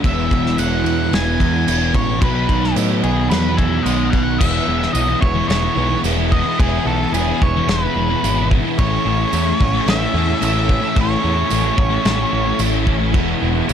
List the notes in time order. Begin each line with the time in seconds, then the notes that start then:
0.03 E1 E2 B2 E3 G#3 B3 E4 B4 E5 G#5 B5, kick, crash
0.31 E1 B2 E3, kick, crash
0.46 snare
0.58 E1 E2 B2 E3 F#5, tambourine, crash
0.84 E2 E3, crash
0.88 B2
1.11 E1 E2 B2 E3 G#5, snare, crash
1.39 E2 B2 E3, kick, crash
1.66 E1 E2 B2 E3, tambourine, crash
1.94 A1 B2 E3 C#5, kick, crash
2.20 B1 B2 D#3 F#3 B3 D#4 B4, kick, crash
2.24 D#4 F#5
2.49 B1 F#3 B3, kick, crash
2.64 snare
2.75 A2 B2 F#3 B3, tambourine, crash
3.02 B1 F#3 B3 G#4, crash
3.29 E2 B2 F#3 B3 B4, snare, crash
3.57 F#3 B3 G#5, kick, crash
3.83 B1 B2 D#5, tambourine, crash
3.87 F#3 B3
4.10 B1 B3 F#5, kick, crash
4.15 F#3
4.38 E1 E2 B2 E3 G#3 B3 E4 B4 E5 G#5, kick, crash
4.66 E1 E2 B2 E3 G#3 B3 E4
4.80 G#3 B3 E4, snare
4.93 B1 E2 B2 E3 G#3 B3 E4 D#5, tambourine, crash
5.07 B2 E3
5.21 E1 E3 G#3 B3 E4 C#5, muted distorted electric guitar stroke, kick
5.34 B2 E3
5.48 E1 E3 G#3 B3 E4 C#5, snare, crash
5.62 B2 E3 G#3 B3 E4
5.75 B1 E2 B2 E3 G#3 B3 E4
5.89 B2 E3 G#3 B3 E4
6.03 E1 E2 B2 E3 G#3 B3 E4, tambourine, crash
6.17 B2 E3
6.32 E3 G#3 B3 E4 D#5, kick
6.44 B2 E3 G#3 B3 E4
6.58 E1 E2 B2 E3 G#3 B3 E4 G#4, kick, crash
6.85 B1 E2 B2 E3 G#3 B3 E4 A4
6.99 G#3 B3 E4
7.12 E1 E2 B2 E3 G#3 B3 E4 G#4, tambourine, crash
7.17 E3
7.27 B2 E3
7.41 E1 E3 G#3 B3 E4 C#5, muted distorted electric guitar stroke, kick
7.56 B2 E3
7.67 E1 E3 G#3 B3 E4 B4, snare, crash
7.81 E3 G#3 B3 E4
7.87 B2
7.95 E1 E2 E3 G#3 B3 E4
7.99 B2 E3
8.09 B2 E3 G#3 B3 E4
8.23 G#1 E2 B2 E3 G#3 B3 E4, tambourine, crash
8.37 B2 E3
8.51 E3 G#3 B3 E4, kick
8.64 B2 E3 G#3 B3 E4
8.78 A1 A2 E3 A3 C#4 E4 A4 C#5, kick, crash
9.05 A1 A2 E3 A3 C#4 E4
9.20 A3 C#4 E4
9.32 E2 A2 E3 A3 C#4 E4, tambourine, crash
9.46 E3 A3
9.60 A1 E3 A3 C#4 E4, muted distorted electric guitar stroke, kick
9.74 E3 A3
9.86 A1 E3 A3 C#4 E4 E5, snare, crash
10.01 E3 A3 C#4 E4
10.14 E2 A2 E3 A3 C#4 E4
10.27 E3 A3 C#4 E4
10.40 A1 A2 E3 A3 C#4 E4, tambourine, crash
10.45 E5
10.54 E3 A3
10.68 E3 A3 C#4 E4, kick
10.82 E3 A3 C#4 E4
10.96 A1 A2 E3 A3 C#4 E4, kick, crash
11.01 C#5
11.22 E2 A2 E3 A3 C#4 E4
11.36 A3 C#4 E4
11.48 A1 A2 E3 A3 C#4 E4, tambourine, crash
11.62 E3 A3
11.75 A1 E3 A3 C#4 E4, muted distorted electric guitar stroke, kick
11.89 E3 A3
12.03 A1 E3 A3 C#4 E4, snare, crash
12.17 E3 A3 C#4 E4
12.31 A1 A2 E3 A3 C#4 E4
12.44 E3 A3 C#4 E4
12.57 A1 A2 E3 A3 C#4 E4, tambourine, crash
12.72 E3 A3
12.85 E3 A3 C#4 E4, kick
12.98 E3 A3 C#4 E4
13.12 E1 E2 B2 E3 G#3 B3 E4 B4 D#5, kick, crash
13.40 E1 E2 B2 E3 G#3 B3 E4
13.54 G#3 B3 E4
13.67 B1 E2 E3 G#3 B3 E4, tambourine, crash